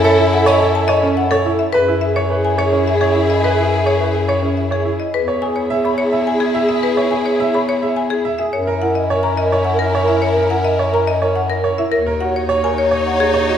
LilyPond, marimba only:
\new Staff \with { instrumentName = "Marimba" } { \time 3/4 \key e \major \tempo 4 = 106 cis''16 r16 fis''16 dis''16 r16 a''16 dis''16 r16 fis''16 a'16 r16 e''16 | b'16 r16 e''16 cis''16 r16 gis''16 cis''16 r16 e''16 gis'16 r16 dis''16 | b'16 r16 e''16 cis''16 r16 gis''16 cis''16 r16 e''16 gis'16 r16 dis''16 | \key e \lydian b'16 r16 gis''16 cis''16 r16 b''16 cis''16 r16 gis''16 gis'16 r16 e''16 |
b'16 r16 gis''16 cis''16 r16 b''16 cis''16 r16 gis''16 gis'16 r16 e''16 | cis''16 r16 fis''16 dis''16 r16 ais''16 dis''16 r16 fis''16 ais'16 r16 e''16 | cis''16 r16 fis''16 dis''16 r16 ais''16 dis''16 r16 fis''16 ais'16 r16 e''16 | ais'16 r16 fis''16 cis''16 r16 gis''16 cis''16 r16 fis''16 gis'16 r16 dis''16 | }